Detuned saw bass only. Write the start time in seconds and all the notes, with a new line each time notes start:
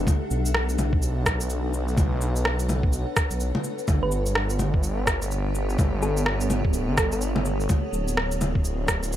0.31 B1
0.79 B1
3.30 B1
3.88 G1
4.83 G1
5.78 G1
6.65 D1
6.88 G1
7.93 D1
8.40 D1